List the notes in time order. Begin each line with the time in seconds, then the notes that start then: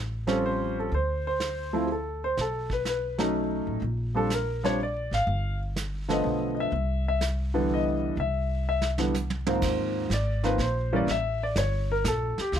Already playing: A1
0.27 F3 G3 C4 C#4 A4, snare
0.46 C5
0.79 A4
0.91 D2 C5, brush sweep
1.27 C5
1.40 snare, hi-hat pedal
1.73 F3 A3 C4 E4
1.87 G#4
1.92 A4
2.24 C5
2.37 B1 A4, brush sweep, snare
2.70 B4, kick
2.85 B4, snare, hi-hat pedal
3.18 F#3 A3 C#4 D#4, snare
3.67 A1
3.82 A#1, brush sweep
4.14 F3 G3 C4 D4 A4
4.30 A#4, snare, hi-hat pedal
4.63 F3 G3 C4 D4 C#5, snare
4.83 D5
5.11 G#1 F5, snare
5.27 G1, brush sweep
5.76 snare, hi-hat pedal
6.08 D3 F3 A3 B3 D#5, snare
6.24 B1
6.55 D#5
6.60 E5
6.72 C2, brush sweep
7.08 E5
7.21 snare, hi-hat pedal
7.54 D3 E3 G3 B3
7.74 D#5
8.17 C2 E5, brush sweep
8.69 E5
8.82 snare
8.98 D3 E3 G3 B3, snare
9.14 hi-hat pedal, high tom
9.30 high tom
9.47 G#2 D#3 F3 A#3 C4, high tom
9.62 D#2, brush sweep, kick, snare, crash
10.10 G#1 D5, snare, hi-hat pedal
10.43 D#3 F3 A#3 C4 B4, snare
10.58 A#1, snare
10.62 C5
10.93 E3 G3 A#3 C#4 D5
11.07 A1, brush sweep, snare
11.11 E5
11.43 D5
11.56 G1 C#5, snare, hi-hat pedal
11.92 A#4
12.04 A#1 A4, snare, hi-hat pedal
12.38 G4, muted upright bass stroke, snare
12.52 D2 F4, brush sweep, snare